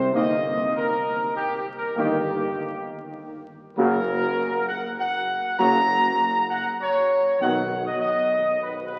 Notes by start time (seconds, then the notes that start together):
Already playing: C2 C3 C4 C5
0.14 G1 D#3 A#3 D#4 D#5
0.76 A#4
1.35 G4
1.57 G4
1.77 A#4
1.96 G1 D#3 A#3 D#4 G4
3.77 F#1 C#3 F#3 A#3 F#4 A#4
4.68 F#5
4.99 F#5
5.58 F#1 C#3 F#3 A#3 F#4 A#5
6.51 F#5
6.81 C#5
7.40 B1 D#3 F#3 B3 F#4 F#5
7.86 D#5
8.00 D#5
8.63 B4
8.85 B4